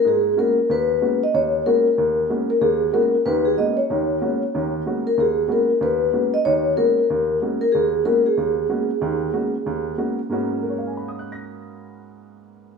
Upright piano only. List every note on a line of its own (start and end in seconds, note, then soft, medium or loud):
0.05 0.32 G#2 medium
0.05 0.32 G#3 medium
0.37 0.57 G#3 medium
0.37 0.57 A#3 medium
0.37 0.58 B3 soft
0.37 0.58 C#4 soft
0.37 0.58 F#4 medium
0.69 0.96 D#2 medium
1.01 1.22 G#3 soft
1.01 1.22 A#3 soft
1.01 1.22 B3 soft
1.01 1.22 C#4 soft
1.01 1.22 F#4 medium
1.34 1.61 D#2 medium
1.66 1.86 G#3 medium
1.66 1.86 A#3 soft
1.66 1.86 B3 soft
1.66 1.86 C#4 soft
1.66 1.86 F#4 medium
1.98 2.25 D#2 medium
2.29 2.49 G#3 medium
2.29 2.50 A#3 soft
2.29 2.50 B3 soft
2.29 2.50 C#4 soft
2.29 2.50 F#4 medium
2.61 2.88 D#2 medium
2.92 3.13 G#3 medium
2.92 3.13 A#3 medium
2.92 3.14 B3 medium
2.92 3.14 C#4 soft
2.92 3.14 F#4 medium
3.25 3.53 D#2 medium
3.25 3.52 D#3 medium
3.57 3.77 G#3 medium
3.57 3.78 A#3 soft
3.57 3.78 B3 soft
3.57 3.78 C#4 soft
3.57 3.78 F#4 medium
3.90 4.17 D#2 medium
3.90 4.17 D#3 medium
4.21 4.42 G#3 soft
4.21 4.42 A#3 soft
4.21 4.42 B3 soft
4.21 4.42 C#4 soft
4.21 4.42 F#4 medium
4.54 4.81 D#2 medium
4.54 4.81 D#3 medium
4.86 5.06 G#3 soft
4.86 5.06 A#3 soft
4.86 5.06 B3 soft
4.86 5.06 C#4 soft
4.86 5.06 F#4 medium
5.17 5.44 D#2 medium
5.48 5.69 G#3 medium
5.48 5.69 A#3 medium
5.48 5.69 B3 soft
5.48 5.69 C#4 soft
5.48 5.69 F#4 medium
5.81 6.08 D#2 medium
6.13 6.33 G#3 soft
6.13 6.34 A#3 soft
6.13 6.34 B3 soft
6.13 6.34 C#4 soft
6.13 6.34 F#4 medium
6.45 6.72 D#2 medium
6.45 6.72 D#3 medium
6.77 6.97 G#3 medium
6.77 6.97 A#3 soft
6.77 6.98 B3 soft
6.77 6.98 C#4 soft
6.77 6.98 F#4 medium
7.10 7.37 D#2 medium
7.41 7.62 G#3 medium
7.41 7.62 A#3 soft
7.41 7.62 B3 soft
7.41 7.62 C#4 soft
7.41 7.62 F#4 medium
7.75 8.01 D#2 medium
8.05 8.26 G#3 medium
8.05 8.26 A#3 soft
8.05 8.26 B3 medium
8.05 8.26 C#4 soft
8.05 8.26 F#4 medium
8.37 8.64 D#2 medium
8.69 8.90 G#3 medium
8.69 8.90 A#3 soft
8.69 8.90 B3 soft
8.69 8.90 C#4 soft
8.69 8.90 F#4 medium
9.01 9.28 D#2 medium
9.01 9.29 D#3 medium
9.33 9.54 G#3 medium
9.33 9.54 A#3 soft
9.33 9.54 B3 soft
9.33 9.54 C#4 soft
9.33 9.54 F#4 medium
9.66 9.93 D#2 medium
9.98 10.18 G#3 soft
9.98 10.18 A#3 soft
9.98 10.18 B3 soft
9.98 10.18 C#4 soft
9.98 10.18 F#4 medium
10.29 12.78 G#2 medium
10.29 12.78 G#3 medium
10.29 12.78 A#3 medium
10.29 12.78 B3 medium
10.29 12.78 C#4 medium
10.29 12.78 F#4 medium
10.63 12.78 A#4 soft
10.70 12.78 C#5 soft
10.79 12.78 F5 soft
10.87 12.78 G#5 soft
10.97 12.78 B5 soft
11.08 12.78 D#6 soft
11.19 12.78 F#6 soft
11.32 12.78 A#6 soft